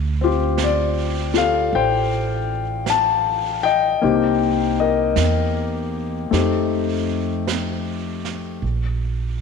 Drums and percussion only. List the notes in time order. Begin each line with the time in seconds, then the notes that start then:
0.58 brush sweep, snare, hi-hat pedal
1.34 snare
1.71 brush sweep
2.86 brush sweep, snare, hi-hat pedal
4.01 brush sweep
5.16 brush sweep, snare, hi-hat pedal
6.33 brush sweep, snare
7.47 brush sweep, snare, hi-hat pedal
8.25 snare
8.64 brush sweep